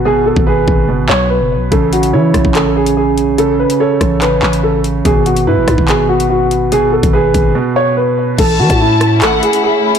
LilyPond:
<<
  \new Staff \with { instrumentName = "Violin section" } { \time 4/4 \key a \lydian \tempo 4 = 144 r1 | r1 | r1 | r1 |
r1 | a''2 fis''4 r4 | }
  \new Staff \with { instrumentName = "Grand piano" } { \time 4/4 \key a \lydian gis'8 a'8 gis'4 r8 cis''8 b'4 | a'8 fis'8 e'4 a'8 gis'8 gis'4 | a'8 b'8 a'4 b'4 a'8 r8 | gis'8 fis'8 e'4 gis'8 fis'8 fis'4 |
gis'8 a'8 gis'4 r8 cis''8 b'4 | a'8 fis'8 e'4 a'8 gis'8 gis'4 | }
  \new Staff \with { instrumentName = "String section" } { \time 4/4 \key a \lydian r1 | r1 | r1 | r1 |
r1 | <a cis' e'>1 | }
  \new Staff \with { instrumentName = "Grand piano" } { \clef bass \time 4/4 \key a \lydian b,4 b'4 b,2 | cis4 cis''4 cis2 | cis4 cis''4 cis2 | b,4 b'4 b,2 |
b,4 b'4 b,2 | r1 | }
  \new Staff \with { instrumentName = "808-style bass" } { \clef bass \time 4/4 \key a \lydian gis,,8. gis,,8. gis,,8 fis,,16 gis,,16 b,,8. fis,,16. b,,16. | a,,4 e8 a,,16 a,,2~ a,,16~ | a,,8. r8. a,,4 a,,4. | gis,,4 gis,16 gis,,16 gis,16 gis,,2~ gis,,16~ |
gis,,8. gis,,8. gis,,8 r2 | a,,8 e16 a,4~ a,16 gis,,8 r4. | }
  \new DrumStaff \with { instrumentName = "Drums" } \drummode { \time 4/4 r8. bd16 r8 bd8 r8 hc8 r4 | <hh bd>8 hh16 hh16 r8 <hh bd ss>16 bd16 <hc hh>8. hh16 r8 hh8 | hh8. hh16 r8 <hh bd ss>8 <hc hh>8 hc16 hh16 r8 hh8 | <hh bd>8 hh16 hh16 r8 <hh bd ss>16 bd16 <hc hh>8. hh16 r8 hh8 |
hh8. <hh bd>16 r8 <hh bd>8 r4 r4 | <cymc hh bd>8. <hh bd>16 r8 <hh ss>8 <hc hh>8 hh16 hh16 r8. hh16 | }
>>